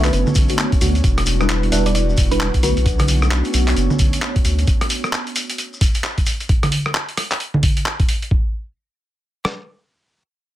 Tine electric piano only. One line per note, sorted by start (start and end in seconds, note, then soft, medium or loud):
0.50 0.64 D3 medium
0.50 0.64 A3 medium
0.50 0.64 B3 medium
0.50 0.64 F#4 medium
0.81 0.93 D3 medium
0.81 0.93 A3 medium
0.81 0.93 B3 medium
0.81 0.93 F#4 medium
1.40 1.70 G3 medium
1.40 1.70 D4 medium
1.40 1.70 E4 medium
1.40 1.70 B4 medium
1.72 1.89 G3 loud
1.72 1.89 D4 medium
1.72 1.89 E4 medium
1.72 1.89 B4 loud
2.31 2.46 G3 medium
2.31 2.46 D4 medium
2.31 2.46 E4 medium
2.31 2.46 B4 medium
2.63 2.75 D3 medium
2.63 2.75 A3 medium
2.63 2.75 B3 medium
2.63 2.75 F#4 medium